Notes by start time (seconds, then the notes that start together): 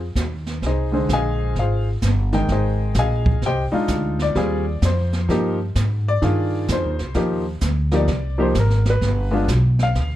Already playing: F2
0.15 D#2, kick, snare, hi-hat pedal
0.47 snare
0.62 C2, brush sweep, kick, snare
0.66 D#4 G#4 C5 D#5
0.92 D3 G#3 G#4 C5
1.09 A#1, kick, snare, hi-hat pedal
1.13 G#4 D#5 F5 G#5
1.56 G#1 F5, brush sweep, kick, snare
1.60 F4 G#4 C5
2.02 G1, kick, snare, hi-hat pedal
2.32 D#3 G#3 D#4 G5, snare
2.48 G#1 D#4 G#4 C5 D#5, brush sweep, kick, snare
2.94 A#1, kick, snare, hi-hat pedal
2.99 G#4 D#5 F5 G#5
3.26 kick
3.42 C2, brush sweep, kick, snare
3.46 G4 C5 D#5 G5
3.72 G#3 D4 D#4 F4, muted upright bass stroke
3.88 D2, kick, snare, hi-hat pedal
4.19 D5, snare
4.35 D#2 G3 C4 F4 G#4, brush sweep, kick, snare
4.82 F2 C5, kick, snare, hi-hat pedal
5.13 snare
5.29 G2 F3 A#3 D#4 G4, brush sweep, kick, snare
5.75 G#2, kick, snare, hi-hat pedal
6.08 D5
6.22 G2 D#3 D4 F4 G#4, brush sweep, kick, snare
6.68 F2, kick, snare, hi-hat pedal
6.72 C5
6.85 D#2
6.99 C2, snare
7.14 D#2 F3 A#3 D#4 G4, brush sweep, kick, snare
7.61 D2, kick, snare, hi-hat pedal
7.92 F3 A#3 D#4 G4 D5, snare
8.08 C2, brush sweep, kick, snare
8.38 F3 A#3 D#4 G4
8.42 C5
8.55 G#1, kick, snare, hi-hat pedal
8.59 A#4
8.70 snare
8.85 snare
8.90 B4
9.01 G1, brush sweep, kick, snare
9.31 G#3 B3 D4 F4
9.48 B1, kick, snare, hi-hat pedal
9.79 F5, snare
9.95 D2, brush sweep, kick, snare